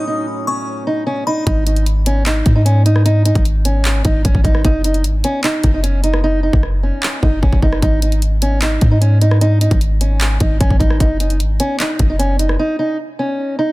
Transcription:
0.00 1.44 A2 medium
0.00 1.43 F#3 medium
0.00 1.44 C#4 medium
0.00 0.44 D#6 loud
0.07 0.25 D#4 medium
0.47 0.85 C#4 medium
0.47 0.66 C#6 medium
0.87 1.04 D#4 medium
1.06 1.24 C#4 medium
1.27 1.44 D#4 medium
1.27 1.46 B5 medium
1.47 2.42 G#1 loud
1.47 1.64 D#4 loud
1.47 kick loud
1.47 closed hi-hat medium
1.67 1.84 D#4 medium
1.67 closed hi-hat medium
1.76 closed hi-hat soft
1.86 closed hi-hat medium
2.06 2.24 C#4 medium
2.06 closed hi-hat medium
2.26 2.54 D#4 medium
2.26 clap loud
2.26 closed hi-hat medium
2.46 3.32 G#2 loud
2.46 kick loud
2.46 closed hi-hat medium
2.56 2.64 D#4 medium
2.65 2.83 C#4 medium
2.65 closed hi-hat medium
2.86 3.03 D#4 medium
2.86 closed hi-hat medium
2.96 cross-stick medium
3.05 3.23 D#4 loud
3.05 closed hi-hat medium
3.25 3.43 D#4 medium
3.25 closed hi-hat medium
3.35 4.02 G#1 loud
3.35 kick loud
3.35 closed hi-hat soft
3.45 closed hi-hat medium
3.65 4.03 C#4 medium
3.65 closed hi-hat medium
3.85 clap loud
3.85 closed hi-hat medium
4.05 4.24 G#1 loud
4.05 4.22 D#4 medium
4.05 kick loud
4.05 closed hi-hat medium
4.25 4.34 G#1 loud
4.25 4.42 C#4 medium
4.25 kick loud
4.25 closed hi-hat medium
4.35 4.44 G#1 loud
4.35 kick medium
4.44 4.64 G#1 loud
4.44 4.61 D#4 medium
4.44 kick loud
4.44 closed hi-hat medium
4.55 cross-stick loud
4.65 5.06 F#1 loud
4.65 4.82 D#4 loud
4.65 kick loud
4.65 closed hi-hat medium
4.84 5.02 D#4 medium
4.84 closed hi-hat medium
4.94 closed hi-hat soft
5.04 5.23 G#1 medium
5.04 closed hi-hat medium
5.24 5.42 C#4 loud
5.24 closed hi-hat medium
5.44 5.72 D#4 medium
5.44 clap loud
5.44 closed hi-hat medium
5.64 6.50 F#1 loud
5.64 kick medium
5.64 closed hi-hat medium
5.74 5.83 D#4 medium
5.83 6.01 C#4 medium
5.83 closed hi-hat medium
6.04 6.21 D#4 medium
6.04 closed hi-hat medium
6.14 cross-stick loud
6.24 6.41 D#4 loud
6.43 6.60 D#4 medium
6.53 6.91 F#1 loud
6.53 kick loud
6.63 cross-stick medium
6.83 7.21 C#4 medium
7.03 clap loud
7.23 7.42 F#1 loud
7.23 7.40 D#4 medium
7.23 kick loud
7.42 7.52 F#1 loud
7.42 7.60 C#4 medium
7.42 kick loud
7.53 7.62 F#1 loud
7.53 kick medium
7.62 7.82 F#1 loud
7.62 7.80 D#4 medium
7.62 kick medium
7.73 cross-stick loud
7.82 8.78 G#1 loud
7.82 8.00 D#4 loud
7.82 kick loud
7.82 closed hi-hat medium
8.02 8.20 D#4 medium
8.02 closed hi-hat medium
8.12 closed hi-hat soft
8.22 closed hi-hat medium
8.42 8.59 C#4 medium
8.42 closed hi-hat medium
8.62 8.90 D#4 loud
8.62 clap loud
8.62 closed hi-hat medium
8.81 9.68 G#2 loud
8.81 kick loud
8.81 closed hi-hat medium
8.91 9.00 D#4 medium
9.01 9.19 C#4 medium
9.01 closed hi-hat medium
9.21 9.39 D#4 medium
9.21 closed hi-hat medium
9.31 cross-stick loud
9.41 9.59 D#4 loud
9.41 closed hi-hat medium
9.61 9.78 D#4 medium
9.61 closed hi-hat medium
9.71 10.38 G#1 loud
9.71 kick loud
9.71 closed hi-hat soft
9.81 closed hi-hat medium
10.01 10.38 C#4 medium
10.01 closed hi-hat medium
10.21 clap loud
10.21 closed hi-hat medium
10.40 10.60 G#1 loud
10.40 10.58 D#4 medium
10.40 kick medium
10.40 closed hi-hat medium
10.60 10.70 G#1 loud
10.60 10.78 C#4 medium
10.60 kick loud
10.60 closed hi-hat medium
10.70 10.80 G#1 loud
10.70 kick medium
10.79 10.99 G#1 loud
10.79 10.97 D#4 medium
10.79 kick loud
10.79 closed hi-hat medium
10.90 cross-stick loud
11.00 11.42 F#1 loud
11.00 11.18 D#4 loud
11.00 kick loud
11.00 closed hi-hat medium
11.20 11.38 D#4 medium
11.20 closed hi-hat medium
11.30 closed hi-hat soft
11.40 11.59 G#1 loud
11.40 closed hi-hat medium
11.60 11.77 C#4 loud
11.60 closed hi-hat medium
11.80 12.08 D#4 medium
11.80 clap loud
11.80 closed hi-hat medium
11.99 12.57 F#1 loud
11.99 kick loud
11.99 closed hi-hat medium
12.10 12.18 D#4 medium
12.19 12.37 C#4 medium
12.19 closed hi-hat medium
12.39 12.57 D#4 medium
12.39 closed hi-hat medium
12.49 cross-stick medium
12.59 12.77 D#4 loud
12.79 12.96 D#4 medium
13.19 13.56 C#4 medium
13.59 13.72 D#4 medium

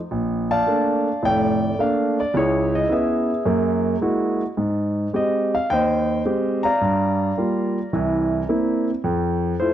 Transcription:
0.11 0.59 A#1 medium
0.51 1.24 D5 medium
0.51 1.58 F5 medium
0.51 1.25 A5 loud
0.67 1.07 A3 soft
0.67 1.07 A#3 soft
0.67 1.07 D4 soft
1.23 1.71 F1 medium
1.23 1.71 A2 medium
1.23 2.18 D5 medium
1.23 1.81 G5 medium
1.79 2.19 A3 medium
1.79 2.19 A#3 soft
1.79 2.19 D4 medium
1.79 2.19 F5 medium
2.20 2.34 D5 medium
2.34 2.83 C#2 medium
2.34 2.88 E4 medium
2.34 2.91 G#4 medium
2.34 2.75 C#5 medium
2.75 2.92 D#5 medium
2.89 3.29 B3 soft
2.89 3.30 C#4 soft
2.89 3.30 E4 medium
2.89 4.37 G#4 medium
2.89 3.43 B4 medium
2.89 4.37 E5 medium
3.45 3.94 F#2 medium
3.45 3.95 A#3 medium
4.01 4.42 G#3 soft
4.01 4.42 A#3 soft
4.01 4.42 E4 soft
4.01 4.42 F#4 medium
4.57 5.06 G#2 medium
5.13 5.53 G#3 medium
5.13 5.54 C4 soft
5.13 5.54 G4 medium
5.13 5.54 D#5 medium
5.55 5.71 F5 medium
5.70 6.19 D#2 medium
5.70 6.78 C5 medium
5.70 6.78 D#5 medium
5.70 6.22 G5 medium
6.25 6.65 G#3 medium
6.25 6.65 C4 soft
6.25 6.66 G4 medium
6.63 8.84 D5 medium
6.63 7.89 F5 medium
6.63 8.83 A#5 medium
6.81 7.30 G2 medium
7.37 7.77 G3 soft
7.37 7.77 A#3 soft
7.37 7.78 F4 medium
7.93 8.42 C2 medium
7.93 8.41 E3 medium
8.49 8.89 A#3 medium
8.49 8.89 C4 soft
8.49 8.89 E4 medium
9.04 9.53 F2 medium
9.60 9.74 A3 medium
9.60 9.74 E4 soft
9.60 9.74 F4 medium
9.60 9.74 C5 medium

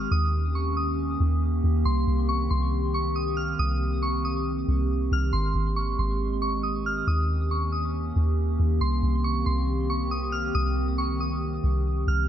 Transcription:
0.00 8.77 D#3 medium
0.00 8.77 G4 medium
0.00 0.11 F6 medium
0.11 1.16 D#2 loud
0.11 5.29 A#3 medium
0.11 1.84 C#4 medium
0.11 0.52 D#6 loud
0.55 0.76 C#6 medium
0.77 1.38 D#6 medium
1.20 1.62 D#2 loud
1.64 1.85 D#2 loud
1.85 2.06 C2 loud
1.85 7.03 C4 medium
1.85 2.26 C6 loud
2.07 2.49 C2 loud
2.29 2.49 C#6 medium
2.50 3.55 C2 loud
2.50 2.91 C6 medium
2.94 3.15 C#6 medium
3.16 3.36 D#6 medium
3.37 3.58 F6 medium
3.59 4.64 C2 loud
3.59 4.00 D#6 loud
4.02 4.23 C#6 medium
4.25 5.08 D#6 medium
4.68 5.10 C2 loud
5.12 5.32 C2 loud
5.12 5.33 F6 medium
5.33 5.54 G#1 loud
5.33 7.06 G#3 medium
5.33 5.74 C6 loud
5.55 5.97 G#1 loud
5.76 5.97 C#6 medium
5.99 7.03 G#1 loud
5.99 6.40 C6 medium
6.42 6.63 C#6 medium
6.63 6.84 D#6 medium
6.86 7.06 F6 medium
7.07 8.12 D#2 loud
7.07 12.25 A#3 medium
7.07 8.79 C#4 medium
7.07 7.48 D#6 loud
7.51 7.72 C#6 medium
7.72 8.34 D#6 medium
8.16 8.58 D#2 loud
8.59 8.80 D#2 loud
8.81 9.02 C2 loud
8.81 12.25 D#3 medium
8.81 12.25 C4 medium
8.81 12.26 G4 medium
8.81 9.22 C6 loud
9.03 9.45 C2 loud
9.24 9.45 C#6 medium
9.46 10.51 C2 loud
9.46 9.87 C6 medium
9.90 10.10 C#6 medium
10.11 10.32 D#6 medium
10.32 10.53 F6 medium
10.55 11.60 C2 loud
10.55 10.96 D#6 loud
10.98 11.19 C#6 medium
11.20 12.03 D#6 medium
11.64 12.05 C2 loud
12.07 12.28 C2 loud
12.07 12.28 F6 medium

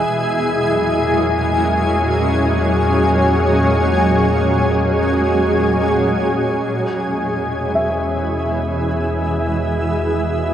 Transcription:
0.00 0.11 B2 medium
0.00 10.54 G#3 medium
0.00 2.29 E4 medium
0.00 10.54 G#4 medium
0.11 6.61 E2 medium
0.11 6.66 A#2 medium
0.22 6.66 F#3 medium
1.15 8.48 C#4 medium
6.66 10.54 E2 medium
6.66 10.54 B2 medium
6.75 10.54 E3 medium
7.72 10.54 E4 medium
7.72 8.86 E5 soft

